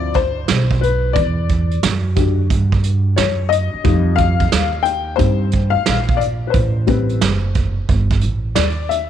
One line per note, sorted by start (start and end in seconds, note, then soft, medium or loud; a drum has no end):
0.00 0.45 D2 loud
0.00 1.11 E3 medium
0.00 0.11 F3 soft
0.00 0.12 C4 soft
0.00 0.12 E4 medium
0.00 0.16 D5 loud
0.14 0.84 C5 loud
0.14 kick medium
0.14 closed hi-hat medium
0.48 1.12 B1 medium
0.48 snare medium
0.48 closed hi-hat medium
0.71 kick medium
0.81 1.16 B4 medium
0.81 closed hi-hat medium
1.13 1.80 E2 loud
1.13 1.78 D5 medium
1.13 kick loud
1.13 closed hi-hat medium
1.49 kick medium
1.49 closed hi-hat medium
1.71 closed hi-hat soft
1.83 2.47 F#2 medium
1.83 snare loud
1.83 closed hi-hat loud
2.16 3.81 D3 soft
2.16 3.81 F#4 medium
2.16 3.81 G4 soft
2.16 kick medium
2.16 closed hi-hat medium
2.50 3.14 G2 medium
2.50 kick loud
2.50 closed hi-hat medium
2.72 kick medium
2.83 closed hi-hat medium
3.16 3.71 F#2 medium
3.16 3.52 C#5 medium
3.16 snare medium
3.16 closed hi-hat medium
3.49 4.19 D#5 loud
3.49 closed hi-hat medium
3.74 muted upright bass stroke soft
3.84 4.49 F2 loud
3.84 6.50 F3 soft
3.84 5.16 G3 medium
3.84 5.17 D#4 medium
3.84 kick loud
3.84 closed hi-hat medium
4.16 4.87 F5 loud
4.16 kick medium
4.16 closed hi-hat medium
4.40 kick medium
4.40 closed hi-hat medium
4.52 5.16 D#2 medium
4.52 snare loud
4.52 closed hi-hat loud
4.83 5.16 G5 loud
4.83 closed hi-hat medium
5.16 5.73 G2 loud
5.16 5.49 G3 medium
5.16 5.49 C4 soft
5.16 5.49 D#4 medium
5.16 5.75 C5 loud
5.16 kick medium
5.16 closed hi-hat medium
5.51 kick medium
5.51 closed hi-hat medium
5.70 6.20 F5 loud
5.75 muted upright bass stroke soft
5.86 6.51 A#1 medium
5.86 snare medium
5.86 closed hi-hat medium
6.09 kick medium
6.17 6.24 D5 medium
6.21 closed hi-hat medium
6.47 6.53 B4 medium
6.47 8.51 C5 medium
6.54 7.18 A1 loud
6.54 kick loud
6.54 closed hi-hat medium
6.87 7.36 G3 medium
6.87 7.37 C4 medium
6.87 7.36 B4 medium
6.87 kick medium
6.87 closed hi-hat medium
7.09 closed hi-hat medium
7.21 7.86 F#1 medium
7.21 snare loud
7.21 closed hi-hat loud
7.55 kick medium
7.55 closed hi-hat medium
7.89 8.21 G1 medium
7.89 kick loud
7.89 closed hi-hat medium
8.11 kick medium
8.11 snare soft
8.21 8.55 A1 medium
8.21 closed hi-hat medium
8.55 9.10 D#2 medium
8.55 8.91 D5 medium
8.55 snare medium
8.55 closed hi-hat medium
8.89 9.10 E5 medium
8.89 closed hi-hat medium